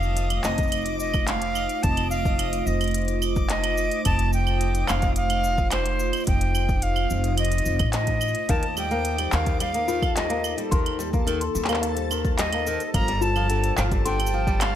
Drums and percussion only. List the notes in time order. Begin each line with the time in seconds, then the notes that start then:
0.03 cabasa
0.17 closed hi-hat, cabasa
0.30 closed hi-hat, cabasa, claves
0.44 clap, cabasa
0.58 kick, closed hi-hat, cabasa
0.63 cabasa
0.68 cabasa
0.72 closed hi-hat, cabasa, claves
0.81 cabasa
0.86 closed hi-hat, cabasa
1.00 cabasa
1.14 kick, cabasa, claves
1.28 clap, closed hi-hat, cabasa
1.42 closed hi-hat
1.55 cabasa, claves
1.69 closed hi-hat, cabasa
1.83 kick, closed hi-hat, cabasa
1.97 closed hi-hat, claves
2.11 cabasa
2.25 kick, cabasa
2.39 closed hi-hat, cabasa, claves
2.53 closed hi-hat, cabasa
2.67 cabasa
2.81 closed hi-hat, cabasa, claves
2.84 closed hi-hat
2.88 closed hi-hat
2.91 closed hi-hat
2.94 closed hi-hat, cabasa
3.02 closed hi-hat
3.05 closed hi-hat
3.08 closed hi-hat, cabasa
3.22 cabasa, claves
3.36 kick, cabasa
3.50 clap, closed hi-hat
3.64 closed hi-hat, claves
3.78 cabasa
3.91 closed hi-hat, cabasa
4.05 kick, closed hi-hat, cabasa, claves
4.19 closed hi-hat
4.33 cabasa
4.47 cabasa, claves
4.61 closed hi-hat, cabasa
4.75 closed hi-hat, cabasa
4.88 clap, cabasa, claves
5.02 kick, closed hi-hat, cabasa
5.16 closed hi-hat, cabasa
5.30 closed hi-hat, cabasa, claves
5.44 cabasa
5.58 kick, cabasa
5.71 clap, closed hi-hat, cabasa, claves
5.86 closed hi-hat
6.00 cabasa
6.13 closed hi-hat, cabasa, claves
6.17 cabasa
6.20 cabasa
6.24 closed hi-hat, cabasa
6.27 kick, cabasa
6.41 closed hi-hat
6.55 cabasa, claves
6.69 kick, cabasa
6.82 closed hi-hat, cabasa
6.96 cabasa, claves
7.10 cabasa
7.24 closed hi-hat, cabasa
7.38 closed hi-hat, cabasa, claves
7.45 closed hi-hat
7.52 closed hi-hat, cabasa
7.58 closed hi-hat
7.66 cabasa
7.79 kick, closed hi-hat, cabasa, claves
7.93 clap, closed hi-hat, cabasa
8.07 kick, closed hi-hat, cabasa
8.21 cabasa, claves
8.28 cabasa
8.35 closed hi-hat
8.49 kick, closed hi-hat, cabasa
8.63 closed hi-hat
8.77 cabasa, claves
8.91 cabasa
9.05 closed hi-hat, cabasa
9.18 closed hi-hat, cabasa, claves
9.32 clap, cabasa
9.46 kick, closed hi-hat, cabasa
9.60 closed hi-hat, cabasa, claves
9.74 closed hi-hat, cabasa
9.88 cabasa
10.02 kick, cabasa, claves
10.17 clap, closed hi-hat, cabasa
10.30 closed hi-hat
10.44 cabasa, claves
10.58 closed hi-hat, cabasa
10.72 kick, closed hi-hat, cabasa
10.86 closed hi-hat, claves
11.00 cabasa
11.14 kick, cabasa
11.27 closed hi-hat, cabasa, claves
11.41 closed hi-hat, cabasa
11.55 cabasa
11.64 clap
11.69 closed hi-hat, cabasa, claves
11.74 clap
11.83 closed hi-hat, cabasa
11.97 closed hi-hat, cabasa
12.11 cabasa, claves
12.25 kick, cabasa
12.39 clap, closed hi-hat, cabasa
12.53 closed hi-hat, claves
12.67 cabasa
12.80 closed hi-hat, cabasa
12.94 kick, closed hi-hat, cabasa, claves
13.08 closed hi-hat
13.22 cabasa
13.36 cabasa, claves
13.50 closed hi-hat, cabasa
13.64 closed hi-hat, cabasa
13.77 clap, cabasa, claves
13.91 kick, closed hi-hat, cabasa
14.06 closed hi-hat, cabasa
14.20 closed hi-hat, cabasa, claves
14.27 cabasa
14.47 kick, cabasa
14.61 clap, closed hi-hat, cabasa, claves